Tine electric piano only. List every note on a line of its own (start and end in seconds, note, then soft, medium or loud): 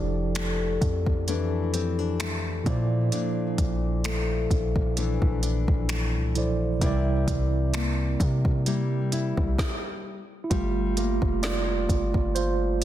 0.00 2.61 F3 medium
0.00 2.62 E4 medium
0.00 2.63 G4 medium
0.00 2.63 A4 medium
0.00 2.64 D5 medium
2.64 6.30 A#2 medium
2.64 6.31 F3 medium
2.64 6.32 E4 medium
2.64 6.32 A4 medium
2.69 6.33 C5 medium
2.69 6.34 D5 medium
6.35 6.81 A#2 medium
6.35 6.82 F3 medium
6.35 6.82 E4 medium
6.35 6.82 A4 medium
6.35 6.83 C5 medium
6.35 6.83 D5 medium
6.79 9.53 C3 medium
6.79 9.54 G3 medium
6.79 9.55 E4 medium
6.84 9.56 A#4 medium
6.84 9.57 D5 medium
10.44 10.51 E4 medium
10.50 10.96 A3 medium
10.50 10.98 F4 medium
10.97 12.84 A3 medium
10.97 12.84 A#3 medium
10.97 11.44 F4 medium
11.43 12.32 F4 medium
11.43 12.38 D5 loud
12.35 12.84 F4 medium
12.35 12.84 C5 loud